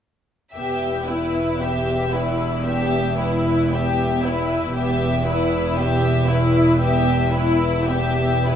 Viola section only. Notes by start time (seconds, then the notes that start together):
0.57 B3
1.08 E4
1.60 B3
2.12 E4
2.66 B3
3.18 E4
3.71 B3
4.24 E4
4.75 B3
5.28 E4
5.79 B3
6.30 E4
6.82 B3
7.34 E4
7.89 B3
8.47 E4